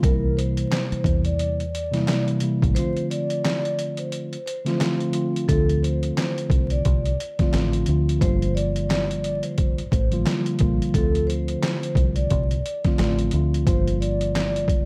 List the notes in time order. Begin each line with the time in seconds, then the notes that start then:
0.02 C2 C3 E3 G3 A#3 E4 A#4, kick, closed hi-hat
0.37 C5, closed hi-hat
0.57 closed hi-hat
0.71 C5, snare, clap, closed hi-hat
0.92 muted fingered electric bass stroke, closed hi-hat
1.04 E2, kick, closed hi-hat
1.25 D5, closed hi-hat
1.39 closed hi-hat
1.60 closed hi-hat
1.75 closed hi-hat
1.91 C3 E3 G3 A#3 E4, snare, closed hi-hat
2.06 C3 E3 G3 A#3 E4, snare, clap, closed hi-hat
2.28 closed hi-hat
2.40 C3 E3 G3 A#3 E4, closed hi-hat
2.62 A1, kick, closed hi-hat
2.75 D3 F3 A3 C4 F4 C5, closed hi-hat
2.97 closed hi-hat
3.10 D5, closed hi-hat
3.30 closed hi-hat
3.44 D5, snare, clap, closed hi-hat
3.65 closed hi-hat
3.79 closed hi-hat
3.97 C5, closed hi-hat
4.12 closed hi-hat
4.33 closed hi-hat
4.46 C5, closed hi-hat
4.65 D3 F3 A3 C4 F4, snare, closed hi-hat
4.81 D3 F3 A3 C4 F4, snare, clap, closed hi-hat
5.00 closed hi-hat
5.11 D3 F3 A3 C4 F4, closed hi-hat
5.36 closed hi-hat
5.48 D2 D3 F3 A3 C4 A4, kick, closed hi-hat
5.52 F4
5.69 closed hi-hat
5.83 C5, closed hi-hat
6.03 closed hi-hat
6.17 C5, snare, clap, closed hi-hat
6.38 closed hi-hat
6.50 C2, kick, closed hi-hat
6.70 D5, closed hi-hat
6.85 C2, kick, closed hi-hat
7.05 closed hi-hat
7.20 closed hi-hat
7.39 D3 F3 A3 C4 F4, kick, snare, closed hi-hat
7.52 A1 D3 F3 A3 C4 F4, snare, clap, closed hi-hat
7.73 closed hi-hat
7.86 D2 D3 F3 A3 C4 F4, closed hi-hat
8.09 closed hi-hat
8.20 G1 D3 F3 G3 A#3 F4 C5, kick, closed hi-hat
8.42 closed hi-hat
8.55 D5, closed hi-hat
8.76 closed hi-hat
8.89 D5, snare, clap, closed hi-hat
9.11 closed hi-hat
9.24 closed hi-hat
9.43 C5, closed hi-hat
9.58 kick, closed hi-hat
9.78 closed hi-hat
9.92 A1 C5, kick, closed hi-hat
10.10 D3 F3 G3 A#3 F4, closed hi-hat
10.25 D3 F3 G3 A#3 F4, snare, clap, closed hi-hat
10.46 closed hi-hat
10.59 A#1 D3 F3 G3 A#3 F4, kick, closed hi-hat
10.82 closed hi-hat
10.94 D2 D3 F3 A3 C4 A4, kick, closed hi-hat
10.98 F4
11.15 closed hi-hat
11.27 C5, closed hi-hat
11.48 closed hi-hat
11.62 C5, snare, clap, closed hi-hat
11.83 closed hi-hat
11.95 C2, kick, closed hi-hat
12.16 D5, closed hi-hat
12.30 C2, kick, closed hi-hat
12.51 closed hi-hat
12.66 closed hi-hat
12.84 D3 F3 A3 C4 F4, kick, snare, closed hi-hat
12.97 A1 D3 F3 A3 C4 F4, snare, clap, closed hi-hat
13.19 closed hi-hat
13.31 D2 D3 F3 A3 C4, closed hi-hat
13.35 F4
13.54 closed hi-hat
13.65 G1 D3 F3 G3 A#3 F4 C5, kick, closed hi-hat
13.87 closed hi-hat
14.01 D5, closed hi-hat
14.21 closed hi-hat
14.35 D5, snare, clap, closed hi-hat
14.56 closed hi-hat
14.68 kick, closed hi-hat